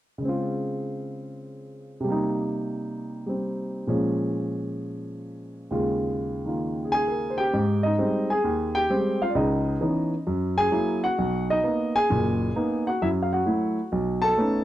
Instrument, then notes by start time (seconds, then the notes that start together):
grand piano
0.18 C#3 G#3
0.25 C4 F4
2.00 C3 G3
2.08 A#3 D#4
3.26 G3 C4
3.87 A#2 F3 G#3 C#4
5.71 D#2 C#3 G#3 F4
6.46 D#3 A#3 F4
6.85 G#4
6.92 G#4 G#5
7.08 A#4
7.30 C5
7.38 G4 G5
7.53 G#2
7.83 D#4 D#5
7.98 G3 G#3 C4
8.30 G#4 G#5
8.44 D#2
8.75 G4 G5
8.90 G3 G#3 C4
9.22 F4 F5
9.30 D5
9.35 C#2 C#3 D#4 D#5
9.81 E3 B3 C#4 D#4
10.27 F#2
10.58 G#4 G#5
10.71 F#3 A#3 E4
11.04 F#4 F#5
11.18 B1
11.50 D#4 D#5
11.64 A#3 B3 D#4
11.96 G#4 G#5
12.10 F#1 A#2
12.56 A#3 B3 D#4
12.87 F#4 F#5
13.02 F#2 E4 E5
13.22 F5
13.33 F#4 F#5
13.46 F#3 A3 E4
13.92 B1
14.22 A4 A5
14.37 A3 B3 C#4 D#4